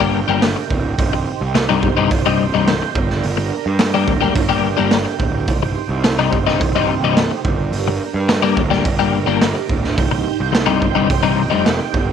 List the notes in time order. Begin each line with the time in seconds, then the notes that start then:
Already playing: G1 D4 G4 A#4 G5
0.00 G3 A#3 D4 G4
0.28 G1 G3 A#3 D4 G4
0.42 snare, open hi-hat
0.56 muted clean electric guitar stroke
0.70 D1, kick
0.97 C1 D#4 C5, kick, open hi-hat
1.13 muted clean electric guitar stroke
1.41 C2
1.55 muted clean electric guitar stroke, snare, open hi-hat
1.69 G2 C3 G3 D#4
1.83 G1, kick
1.97 G2 C3 G3 D#4
2.11 C1, muted clean electric guitar stroke, kick, open hi-hat
2.26 G2 C3 G3 D#4
2.54 C1 G2 C3 G3 D#4
2.67 snare, open hi-hat
2.82 muted clean electric guitar stroke
2.95 G1 D4 A#4 G5, kick
3.10 snare
3.23 G1, open hi-hat
3.37 muted clean electric guitar stroke
3.66 G2
3.79 muted clean electric guitar stroke, snare, open hi-hat
3.94 G3 A#3 D4 G4
4.07 D1, kick
4.21 G3 A#3 D4 G4
4.35 G1, muted clean electric guitar stroke, kick, open hi-hat
4.49 G3 A#3 D4 G4
4.77 G1 G3 A#3 D4 G4
4.91 snare, open hi-hat
5.05 muted clean electric guitar stroke
5.19 D1, kick
5.47 C1 D#4 C5, kick, open hi-hat
5.63 muted clean electric guitar stroke
5.89 C2
6.04 muted clean electric guitar stroke, snare, open hi-hat
6.19 G2 C3 G3 D#4
6.32 G1, kick
6.46 G2 C3 G3 D#4, snare
6.61 C1, muted clean electric guitar stroke, kick, open hi-hat
6.76 G2 C3 G3 D#4
7.01 C1 G2 C3 G3 D#4
7.17 snare, open hi-hat
7.31 muted clean electric guitar stroke
7.45 G1 D4 G4 A#4, kick
7.72 G1, open hi-hat
7.88 muted clean electric guitar stroke
8.14 G2
8.29 muted clean electric guitar stroke, snare, open hi-hat
8.42 G3 A#3 D4 G4
8.57 D1, kick
8.70 G3 A#3 D4 G4, snare
8.85 G1, muted clean electric guitar stroke, kick, open hi-hat
8.99 G3 A#3 D4 G4
9.26 G1 G3 A#3 D4 G4
9.41 snare, open hi-hat
9.55 muted clean electric guitar stroke
9.69 D1, kick
9.84 snare
9.95 C1 D#4 C5 G5, kick, open hi-hat
10.11 muted clean electric guitar stroke
10.40 C2
10.52 muted clean electric guitar stroke, snare, open hi-hat
10.66 G2 C3 G3 D#4
10.82 G1, kick
10.95 G2 C3 G3 D#4
11.09 C1, muted clean electric guitar stroke, kick, open hi-hat
11.23 G2 C3 G3 D#4
11.50 F1 G2 C3 G3 D#4
11.66 snare, open hi-hat
11.79 muted clean electric guitar stroke
11.93 G1 D4 G4 A#4, kick